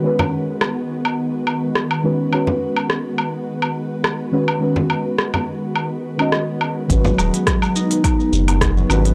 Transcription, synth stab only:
X:1
M:4/4
L:1/16
Q:"Swing 16ths" 1/4=105
K:G#m
V:1 name="Synth stab"
[D,G,CFB]12- [D,G,CFB]2 [D,G,CFB]2 | [D,G,CFB]12- [D,G,CFB]2 [D,G,CFB]2 | [D,G,CFB]8- [D,G,CFB]3 [D,G,CFd]4- [D,G,CFd] | [D,G,CFB]12- [D,G,CFB]2 [D,G,CFB]2 |]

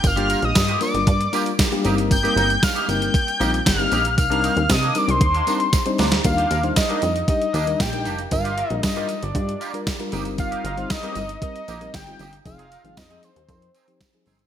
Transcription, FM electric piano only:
X:1
M:4/4
L:1/16
Q:1/4=116
K:Cm
V:1 name="FM electric piano"
[FB] [G,B,DFG]2 z3 [G,B,DFB]2 z2 [G,B,DFB] z2 [G,B,DFG] [G,B,CEB]2 | z [G,B,CEB]2 z3 [G,B,CEB]2 z2 [G,B,CEF] z2 [G,B,CEG] z2 | [EB] [G,CDEB]2 z3 [G,CDEB]2 z2 [G,CDEB] z2 [G,CDEc] z2 | [G,DEB] z2 [G,DEc] z [G,DEB] z2 [G,DEG] z2 [G,DEB] z [G,DEB] z2 |
[G,DFB] z2 [G,DFB] z [G,DFB] z2 [G,DFG] z2 [G,DFB] z [G,DFB] [G,CEB]2- | [G,CEB]2 z [G,CEc] z [G,CEB] z2 [G,CEB] z2 [G,CEB] z [G,CEF] z2 | [F,CEA] z2 [F,CEA] z [F,CEA] z2 [F,CEB] z2 [F,CEG] z [F,CEA] z2 |]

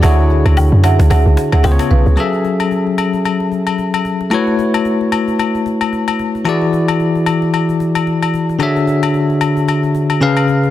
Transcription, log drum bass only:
X:1
M:4/4
L:1/16
Q:"Swing 16ths" 1/4=112
K:F#m
V:1 name="Log drum bass" clef=bass
D,,3 D,,2 F,,2 D,, D,, C,, z D,, C,, z B,,, C,, | z16 | z16 | z16 |
z16 |]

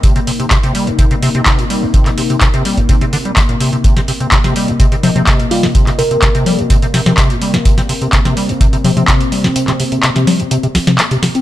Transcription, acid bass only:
X:1
M:4/4
L:1/16
Q:1/4=126
K:Cm
V:1 name="Acid bass" clef=bass
C, C, C, C, C, C, G, C,, C, C, C, C, C, B,, G, C,, | C, C, C, C, C, C, G, C,, C, C, D, G, D, B,, C, C, | C, C, C, C, C, C, G, C,, C, C, C, C, C, B,, G, C,, | C, C, C, C, C, C, G, C,, C, C, C, C, C, B,, G, C,, |
C, C, C, C, C, C, G, C,, C, C, C, C, C, B,, G, C,, | C, C, C, C, C, C, G, C,, C, C, C,, C, C C, C, C |]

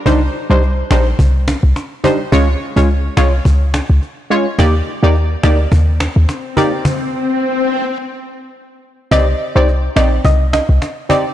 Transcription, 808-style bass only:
X:1
M:4/4
L:1/16
Q:"Swing 16ths" 1/4=106
K:Cm
V:1 name="808-style bass" clef=bass
C,,2 z C,,3 B,,,2 C,,3 C,, z4 | _D,,2 z D,,3 C,,2 D,,3 D,, z4 | E,,2 z E,,3 D,,2 E,,3 E,, z4 | z16 |
C,,2 z C,,3 B,,,2 C,,3 C,, z4 |]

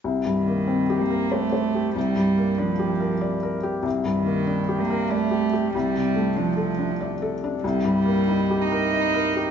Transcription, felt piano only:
X:1
M:3/4
L:1/8
Q:1/4=95
K:Cdor
V:1 name="Felt piano"
(3C,, G,, B, (3C G B (3c c G | (3C,, G,, B, (3D G B (3d B G | (3C,, G,, B, (3D G B (3d G G | (3C,, C, A, (3D A D (3d A D |
(3C,, G,, B, (3E G B (3e B G |]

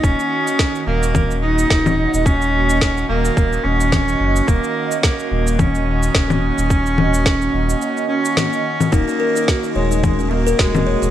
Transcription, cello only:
X:1
M:4/4
L:1/8
Q:"Swing 16ths" 1/4=108
K:Ebm
V:1 name="Cello"
D3 B,2 E3 | D3 B,2 D3 | B,2 B,2 D4- | D4- D D3 |
B,3 A,2 B, A,2 |]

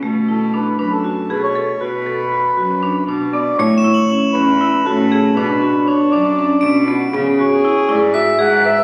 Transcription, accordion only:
X:1
M:7/8
L:1/16
Q:1/4=118
K:Bdor
V:1 name="Accordion"
z2 A2 B2 B A3 B c3 | B8- B2 z2 d2 | c6 B4 A4 | B4 c2 d6 z2 |
z2 c4 d2 e2 f2 e2 |]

